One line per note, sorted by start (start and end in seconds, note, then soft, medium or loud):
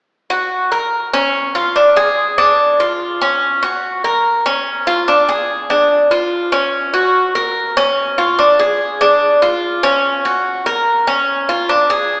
0.30 0.71 F#4 medium
0.72 1.12 A#4 medium
1.14 1.54 C#4 medium
1.55 1.75 F4 medium
1.76 1.96 D4 medium
1.96 2.37 G#4 medium
2.38 2.78 D4 medium
2.80 3.20 F4 medium
3.21 3.62 C#4 medium
3.63 4.03 F#4 medium
4.04 4.44 A#4 medium
4.46 4.86 C#4 medium
4.87 5.07 F4 medium
5.08 5.28 D4 medium
5.29 5.69 G#4 medium
5.70 6.10 D4 medium
6.11 6.51 F4 medium
6.52 6.93 C#4 medium
6.94 7.34 F#4 medium
7.35 7.75 A#4 medium
7.77 8.17 C#4 medium
8.18 8.38 F4 medium
8.39 8.59 D4 medium
8.59 9.00 G#4 medium
9.01 9.41 D4 medium
9.42 9.82 F4 medium
9.83 10.23 C#4 medium
10.25 10.65 F#4 medium
10.66 11.06 A#4 medium
11.07 11.47 C#4 medium
11.49 11.69 F4 medium
11.69 11.89 D4 medium
11.90 12.20 G#4 medium